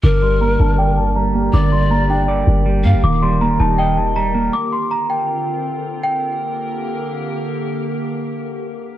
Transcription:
0.03 0.58 G1 loud
0.03 3.01 D3 medium
0.03 0.97 D3 medium
0.03 3.01 A#3 medium
0.03 4.50 G4 medium
0.03 1.12 A#4 loud
0.03 6.00 A#4 medium
0.03 0.21 D6 loud
0.22 1.15 G3 medium
0.22 0.39 C6 medium
0.41 1.34 A#3 medium
0.41 0.58 A#5 medium
0.60 1.50 G1 loud
0.60 1.54 D4 medium
0.60 0.77 A5 medium
0.79 1.72 D5 medium
0.79 0.96 G5 loud
0.97 1.14 A5 medium
1.16 1.71 G3 medium
1.16 1.51 A#5 medium
1.35 1.90 A#3 medium
1.53 2.44 G1 loud
1.53 2.47 D3 medium
1.53 2.25 D5 loud
1.53 1.71 D6 loud
1.72 2.65 G3 medium
1.72 1.89 C6 medium
1.91 2.83 A#3 medium
1.91 2.08 A#5 medium
2.10 3.04 D4 medium
2.10 3.00 G5 medium
2.28 3.03 D5 loud
2.47 2.86 G1 loud
2.66 3.03 G3 medium
2.84 2.96 G2 loud
2.84 3.03 A#3 medium
2.84 3.03 F5 medium
2.94 3.03 G1 loud
3.03 3.58 D#1 loud
3.03 3.97 D#3 medium
3.03 4.52 D#3 medium
3.03 4.52 A#3 medium
3.03 3.21 D6 loud
3.22 4.15 G3 medium
3.22 3.39 C6 medium
3.41 4.34 A#3 medium
3.41 3.58 A#5 medium
3.60 4.50 D#1 loud
3.60 4.54 D#4 medium
3.60 3.77 A5 medium
3.78 4.54 D#5 loud
3.78 3.96 G5 loud
3.97 4.14 A5 medium
4.16 4.54 G3 medium
4.16 4.51 A#5 medium
4.35 4.54 A#3 medium
4.53 6.02 D3 medium
4.53 6.02 C4 medium
4.53 6.02 F4 medium
4.53 4.71 D6 loud
4.72 4.90 C6 medium
4.91 5.08 A#5 medium
5.10 6.00 G5 medium
6.04 8.98 D3 medium
6.04 8.98 A#3 medium
6.04 8.98 G4 medium
6.04 8.98 A#4 medium
6.04 7.12 G5 medium

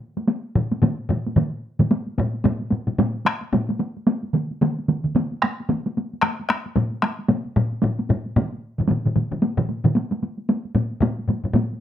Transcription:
0.17 taiko high medium
0.28 taiko high medium
0.56 taiko low-mid medium
0.56 taiko mid medium
0.71 taiko high medium
0.82 taiko low-mid medium
0.82 taiko mid medium
0.82 taiko high medium
1.09 taiko low-mid medium
1.09 taiko mid medium
1.09 taiko high soft
1.27 taiko high soft
1.36 taiko low-mid medium
1.36 taiko mid medium
1.36 taiko high medium
1.79 taiko low-mid medium
1.79 taiko mid medium
1.79 taiko high soft
1.91 taiko high medium
2.07 taiko high soft
2.18 taiko low-mid loud
2.18 taiko high medium
2.34 taiko high soft
2.44 taiko low-mid loud
2.44 taiko high medium
2.60 taiko high soft
2.71 taiko low-mid medium
2.71 taiko high medium
2.88 taiko low-mid medium
2.88 taiko high soft
2.99 taiko low-mid medium
2.99 taiko high medium
3.15 taiko high soft
3.26 taiko rim medium
3.26 taiko high medium
3.41 taiko high soft
3.53 taiko low-mid medium
3.53 taiko high medium
3.69 taiko high medium
3.79 taiko high medium
3.97 taiko high soft
4.07 taiko high medium
4.24 taiko high soft
4.34 taiko mid medium
4.34 taiko high medium
4.51 taiko high soft
4.61 taiko mid loud
4.61 taiko high medium
4.78 taiko high soft
4.88 taiko mid medium
4.88 taiko high medium
5.04 taiko mid medium
5.04 taiko high soft
5.15 taiko mid medium
5.15 taiko high medium
5.32 taiko high soft
5.42 taiko rim medium
5.42 taiko high medium
5.60 taiko high soft
5.69 taiko mid medium
5.69 taiko high medium
5.87 taiko high medium
5.97 taiko high medium
6.13 taiko high soft
6.22 taiko rim medium
6.22 taiko high medium
6.40 taiko high soft
6.49 taiko rim medium
6.49 taiko high medium
6.66 taiko high soft
6.76 taiko low-mid loud
6.76 taiko high medium
6.92 taiko high soft
7.02 taiko rim medium
7.02 taiko high medium
7.19 taiko high soft
7.29 taiko low-mid medium
7.29 taiko high medium
7.46 taiko high soft
7.56 taiko low-mid loud
7.56 taiko high soft
7.72 taiko high soft
7.82 taiko low-mid medium
7.82 taiko high medium
7.99 taiko high soft
8.09 taiko low-mid medium
8.09 taiko high medium
8.26 taiko high soft
8.36 taiko low-mid loud
8.36 taiko mid medium
8.36 taiko high medium
8.53 taiko high soft
8.78 taiko low-mid medium
8.78 taiko mid medium
8.78 taiko high soft
8.89 taiko low-mid medium
8.89 taiko mid medium
8.89 taiko high medium
9.05 taiko low-mid medium
9.05 taiko mid medium
9.05 taiko high soft
9.15 taiko low-mid medium
9.15 taiko mid medium
9.15 taiko high medium
9.32 taiko low-mid medium
9.32 taiko mid medium
9.32 taiko high soft
9.42 taiko high medium
9.57 taiko low-mid medium
9.57 taiko mid medium
9.57 taiko high soft
9.69 taiko high soft
9.84 taiko low-mid medium
9.84 taiko mid medium
9.84 taiko high soft
9.95 taiko high medium
10.11 taiko high medium
10.23 taiko high medium
10.38 taiko high soft
10.49 taiko high medium
10.65 taiko high soft
10.75 taiko low-mid medium
10.75 taiko high medium
10.91 taiko high soft
11.01 taiko low-mid loud
11.01 taiko high medium
11.19 taiko high soft
11.28 taiko low-mid medium
11.28 taiko high medium
11.44 taiko low-mid medium
11.44 taiko high soft
11.54 taiko low-mid loud
11.54 taiko high medium
11.72 taiko high soft

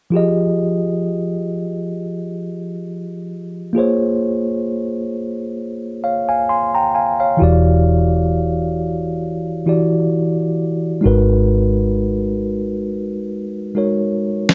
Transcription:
0.11 3.71 F3 medium
0.11 3.72 F4 soft
0.11 3.73 G4 medium
0.15 3.74 G#4 medium
0.15 3.74 D#5 medium
3.73 6.89 A#3 medium
3.73 6.90 F4 medium
3.73 6.90 G#4 medium
3.78 6.00 C5 medium
3.78 6.01 C#5 medium
6.04 6.27 C#5 soft
6.04 6.27 F5 soft
6.29 6.48 F5 soft
6.29 6.48 G#5 medium
6.49 6.73 G#5 soft
6.49 6.73 C6 medium
6.75 6.94 G5 medium
6.75 6.94 A#5 medium
6.95 7.18 F5 soft
6.95 7.18 G#5 soft
7.20 7.63 C#5 soft
7.20 7.63 F5 medium
7.37 9.62 E3 medium
7.37 9.62 E4 medium
7.37 9.63 F#4 medium
7.42 11.00 E1 medium
7.42 9.64 G4 medium
7.42 9.65 D5 medium
9.66 11.03 E3 soft
9.66 11.03 E4 soft
9.66 11.03 F#4 soft
9.66 11.04 G4 soft
9.66 11.04 D5 soft
11.01 13.71 G#3 medium
11.01 13.72 D#4 medium
11.01 13.72 F#4 medium
11.05 14.54 G#1 medium
11.05 13.73 A#4 medium
11.05 13.74 B4 medium
13.75 14.54 G#3 soft
13.75 14.54 D#4 soft
13.75 14.54 F#4 soft
13.75 14.54 A#4 soft
13.75 14.54 C#5 soft
14.49 snare medium

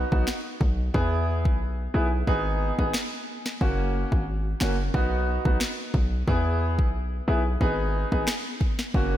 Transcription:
0.12 0.26 B1 medium
0.12 0.23 B3 medium
0.12 0.23 D#4 medium
0.12 0.23 F#4 medium
0.12 kick medium
0.27 finger snap medium
0.27 snare loud
0.61 0.90 B1 medium
0.61 kick loud
0.94 1.47 E2 loud
0.94 1.56 B3 medium
0.94 1.56 E4 medium
0.94 1.56 G#4 loud
0.94 kick loud
1.45 1.88 B1 loud
1.45 kick medium
1.94 2.23 B1 loud
1.94 2.07 B3 medium
1.94 2.07 E4 medium
1.94 2.07 G#4 medium
2.27 2.72 G#1 loud
2.27 2.74 B3 medium
2.27 2.74 D#4 medium
2.27 2.75 G#4 loud
2.27 kick medium
2.78 2.92 G#1 medium
2.78 2.90 B3 medium
2.78 2.90 D#4 medium
2.78 2.90 G#4 medium
2.78 kick medium
2.94 finger snap medium
2.94 snare loud
3.46 snare medium
3.61 4.05 F#1 loud
3.61 4.23 A#3 medium
3.61 4.23 C#4 medium
3.61 4.23 F#4 medium
3.61 kick loud
4.12 4.54 G#1 medium
4.12 kick medium
4.60 4.90 F#1 loud
4.60 4.74 A#3 medium
4.60 4.74 C#4 medium
4.60 4.74 F#4 medium
4.60 finger snap medium
4.60 snare loud
4.94 5.38 B1 loud
4.94 5.41 B3 medium
4.94 5.41 D#4 medium
4.94 5.41 F#4 loud
4.94 kick medium
5.45 5.59 B1 medium
5.45 5.57 B3 medium
5.45 5.57 D#4 medium
5.45 5.57 F#4 medium
5.45 kick loud
5.60 finger snap medium
5.60 snare loud
5.94 6.23 B1 medium
5.94 kick loud
6.28 6.80 E2 loud
6.28 6.89 B3 medium
6.28 6.89 E4 medium
6.28 6.90 G#4 loud
6.28 kick loud
6.79 7.21 B1 medium
6.79 kick medium
7.28 7.57 B1 loud
7.28 7.40 B3 medium
7.28 7.41 E4 medium
7.28 7.41 G#4 medium
7.61 8.05 G#1 loud
7.61 8.08 B3 medium
7.61 8.08 D#4 medium
7.61 8.08 G#4 loud
7.61 kick medium
8.12 8.26 G#1 medium
8.12 8.23 B3 medium
8.12 8.23 D#4 medium
8.12 8.24 G#4 medium
8.12 kick medium
8.27 finger snap medium
8.27 cross-stick medium
8.27 snare loud
8.61 kick loud
8.79 snare medium
8.94 9.17 F#1 loud
8.94 9.17 A#3 medium
8.94 9.17 C#4 medium
8.94 9.17 F#4 medium
8.94 kick loud

